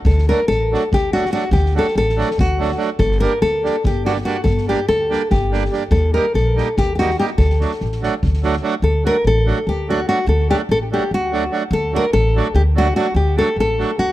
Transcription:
0.05 D2 A4, kick
0.18 snare
0.28 F#3 A3 D4 F#4 A#4, snare
0.48 A1 A4, snare
0.71 F#3 A3 D4 F#4, snare
0.92 D2 G4, kick
1.13 F#3 A3 D4 F#4, snare
1.25 snare
1.32 F#3 A3 D4 F#4, snare
1.51 D2 G4, kick
1.66 snare
1.74 F#3 A3 D4 F#4, snare
1.79 A4
1.88 snare
1.95 A1 A4, snare
2.09 snare
2.16 F#3 A3 D4 F#4
2.21 snare
2.31 snare
2.38 D2 F#4, kick
2.59 F#3 A3 D4 F#4, snare
2.71 snare
2.77 F#3 A3 D4 F#4, snare
2.99 G1 A4, kick
3.11 snare
3.20 G3 A#3 D4 G4 A#4, snare
3.42 D2 A4, snare
3.63 G3 A#3 D4 G4, snare
3.84 G1 G4, kick
4.05 G3 A#3 D4 F#4 G4, snare
4.16 snare
4.24 G3 A#3 D4 F#4 G4, snare
4.44 G1 A4, kick
4.57 snare
4.67 G3 A#3 D4 G4, snare
4.88 D2 A4, snare
5.10 G3 A#3 D4 G4, snare
5.31 G1 G4, kick
5.51 G3 A#3 D4 G4, snare
5.65 snare
5.71 G3 A#3 D4 G4, snare
5.91 D#2 A4, kick
6.13 G3 A#3 D#4 G4 A#4
6.34 A#1 A4, snare
6.55 G3 A#3 D#4 G4, snare
6.77 D#2 G4, kick
6.95 G3 A#3 F#4 G4
7.00 D#4 G4, snare
7.10 snare
7.18 G3 A#3 D#4 G4, snare
7.38 D2 A4, kick
7.50 snare
7.60 F#3 A3 D4 F#4, snare
7.71 snare
7.80 A1, snare
7.92 snare
8.01 F#3 A3 D4 F#4, snare
8.23 D2, kick
8.33 snare
8.43 F#3 A3 D4 F#4, snare
8.53 snare
8.62 F#3 A3 D4 F#4
8.82 D2 A4
9.04 F#3 A3 D4 F#4 A#4
9.25 A1 A4
9.46 F#3 A3 D4 F#4
9.67 D2 G4
9.88 F#3 A3 D4 F#4
10.07 F#3 A3 D4 F#4
10.27 D2 A4
10.49 F#3 A3 D4 F#4 G4
10.69 A1 A4
10.91 F#3 A3 D4 F#4 G4
11.11 D2 F#4
11.31 F#3 A3 D4 F#4
11.50 F#3 A3 D4 F#4
11.71 D2 A4
11.92 F#3 A3 D4 F#4 A#4
12.13 A1 A4
12.35 F#3 A3 D4 F#4
12.55 D2 G4
12.75 F#3 A3 D4 F#4
12.95 F#3 A3 D4 F#4
13.15 D2 G4
13.36 F#3 A3 D4 F#4 A4
13.56 A1 A4
13.78 F#3 A3 D4 F#4
13.98 D2 F#4

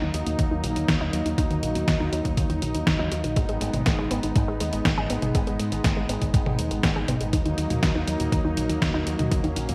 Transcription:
Already playing: F#3 A#3 D#4
0.02 D#2 D#3
0.14 D#2 F#3, closed hi-hat
0.26 D#2 A#2, closed hi-hat
0.39 D#2, kick, closed hi-hat
0.51 D#2 D#3
0.64 A#1 D#3, closed hi-hat
0.76 D#2 D#3, closed hi-hat
0.88 D#2 D#3, kick, snare, closed hi-hat
1.01 D#2 D#4
1.13 D#2 F#3, closed hi-hat
1.26 D#2 D#3, closed hi-hat
1.38 D#2 D#3, kick, closed hi-hat
1.50 D#2 D#3, closed hi-hat
1.63 A#1 D#3, closed hi-hat
1.75 D#2 A#2, closed hi-hat
1.88 D#2 D#3, kick, snare, closed hi-hat
2.00 D#2 D#3
2.12 D#2 F#3, closed hi-hat
2.25 D#2 A#2, kick, closed hi-hat
2.37 D#2, kick, closed hi-hat
2.50 D#2 D#3, closed hi-hat
2.62 A#1 D#3, closed hi-hat
2.75 D#2 D#3, closed hi-hat
2.87 D#2 D#3, kick, snare, closed hi-hat
2.99 D#2 D#4
3.12 D#2 F#3, closed hi-hat
3.24 A#1 D#3, closed hi-hat
3.36 G#1 G#3 B3, kick, closed hi-hat
3.49 G#1 G#3, closed hi-hat
3.61 G#1 G#3, closed hi-hat
3.74 G#1 D#3, closed hi-hat, high tom
3.86 G#1 A#3, kick, snare, closed hi-hat
3.99 G#1 G#3
4.11 G#1 B3, closed hi-hat
4.23 G#1 D#3, closed hi-hat
4.36 G#1 G#2, kick, closed hi-hat
4.48 G#1 G#3
4.60 D#2 G#3, closed hi-hat
4.73 G#1 G#3, closed hi-hat
4.85 G#1 A#3, kick, snare, closed hi-hat
4.98 G#1 G#4
5.10 G#1 B3, closed hi-hat
5.22 G#1 G#3, closed hi-hat, high tom
5.35 G#1 G#3, kick, closed hi-hat
5.47 G#1 G#3, closed hi-hat
5.59 G#2 G#3, closed hi-hat
5.72 G#1 D#3, closed hi-hat
5.84 G#1 A#3, kick, snare, closed hi-hat
5.97 G#1 G#3
6.09 G#1 B3, closed hi-hat
6.21 G#1 D#3, kick, closed hi-hat
6.34 G#1 G#2, kick, closed hi-hat
6.46 G#1 G#3, high tom
6.59 D#2 G#3, closed hi-hat
6.71 G#1 G#3, closed hi-hat
6.83 G#1 A#3, kick, snare, closed hi-hat
6.96 G#1 G#4
7.08 G#1 B3, closed hi-hat, high tom
7.21 G#1 G#3, closed hi-hat
7.33 D#2 D#3 F#3 A#3 D#4, kick, closed hi-hat
7.45 D#2 D#3, closed hi-hat
7.58 D#2 D#3, closed hi-hat
7.70 D#2 A#2, closed hi-hat, high tom
7.83 D#2 D#3, kick, snare, closed hi-hat
7.95 D#2 D#3
8.07 D#2 F#3, closed hi-hat
8.20 D#2 A#2, closed hi-hat
8.32 D#2, kick, closed hi-hat
8.45 D#2 D#3
8.57 A#1 D#3, closed hi-hat
8.69 D#2 D#3, closed hi-hat
8.82 D#2 D#3, kick, snare, closed hi-hat
8.94 D#2 D#4
9.07 D#2 F#3, closed hi-hat
9.19 D#2 D#3, closed hi-hat, high tom
9.31 D#2 D#3 C#4, kick, closed hi-hat
9.44 D#2 D#3, closed hi-hat
9.56 A#1 D#3, closed hi-hat
9.69 D#2 A#2, closed hi-hat

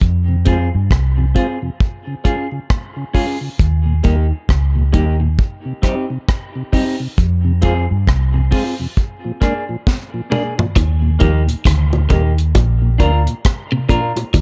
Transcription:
0.01 F2, kick, hi-hat pedal
0.28 F2 C3
0.45 G#3 C4 F4 G#4, kick, closed hi-hat
0.75 G2
0.91 C2, kick, cross-stick
1.18 F2 C3, muted clean electric guitar stroke
1.35 G#3 C4 F4 G#4, kick, closed hi-hat
1.62 F2 C3
1.80 kick
2.07 C#3
2.24 G#3 C#4 F4 G#4, kick, closed hi-hat
2.52 C#3
2.70 kick, cross-stick
2.96 C#3
3.13 G#3 C#4 F4 G#4, kick, open hi-hat
3.41 C#3
3.59 D#2, kick, hi-hat pedal
3.86 D#2 A#2
4.03 D#2 G3 A#3 D#4 G4, kick, closed hi-hat
4.49 C#2, kick, cross-stick
4.75 D#2 A#2
4.92 D#2 G3 A#3 D#4 G4, kick, closed hi-hat
5.20 D#2 A#2, muted clean electric guitar stroke
5.39 kick
5.65 C3
5.82 G3 C4 D#4 G4, kick, cross-stick, closed hi-hat
6.10 C3
6.29 kick, cross-stick
6.56 C3
6.72 G3 C4 D#4 G4, kick, open hi-hat
7.00 C3
7.18 F2, kick, hi-hat pedal
7.45 F2 C3
7.61 G#3 C4 F4 G#4, kick, closed hi-hat
7.91 G2
8.07 C2, kick, cross-stick
8.34 F2 C3, muted clean electric guitar stroke
8.51 G#3 C4 F4 G#4, kick, open hi-hat
8.80 F2 C3
8.97 kick, hi-hat pedal
9.25 A#2 F3
9.41 G#3 A#3 D4 G#4, kick, cross-stick, closed hi-hat
9.69 A#2 F3
9.87 kick, snare
10.14 A#2 F3
10.30 G#3 A#3 D4 G#4, mid tom
10.58 A#2 F3, muted clean electric guitar stroke, floor tom
10.76 D#2 D#3, kick, closed hi-hat, high bongo
11.02 D#2 A#2
11.19 D#2 F3 G3 A#3 D#4 G4, kick, closed hi-hat
11.47 D#2 A#2, closed hi-hat
11.65 D2 D#3, kick, cross-stick, closed hi-hat
11.93 D#2 A#2, high bongo
12.09 D#2 A#2 G3 A#3 D#4 G4, kick, closed hi-hat, low bongo
12.38 closed hi-hat
12.55 A#1, kick, closed hi-hat, high bongo
12.82 A#2
12.98 D2 F3 A#3 D4 F4 A#4, kick, closed hi-hat, high bongo
13.27 A#2, closed hi-hat
13.45 kick, cross-stick, closed hi-hat
13.72 A#2 C3
13.88 A#2 F3 A#3 D4 F4 A#4, kick, closed hi-hat, low bongo
14.16 A#2, closed hi-hat, high bongo
14.34 D#2 D#3, kick, closed hi-hat, high bongo

